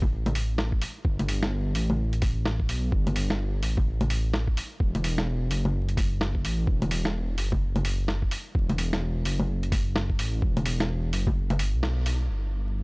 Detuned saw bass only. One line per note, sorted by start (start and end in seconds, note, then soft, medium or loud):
0.00 0.80 A1 medium
1.05 1.74 G1 loud
1.75 2.70 A1 medium
2.69 2.91 B1 loud
2.92 3.62 G1 loud
3.63 4.55 A1 medium
4.80 5.49 E1 loud
5.50 6.45 F#1 medium
6.44 6.66 A1 loud
6.67 7.37 E1 loud
7.38 8.30 F#1 loud
8.55 9.24 E1 loud
9.25 10.20 F#1 medium
10.19 10.41 A1 loud
10.42 11.12 E1 medium
11.13 11.61 F#1 medium
11.60 11.75 G1 medium
11.74 12.29 B1 medium
12.30 12.83 G1 medium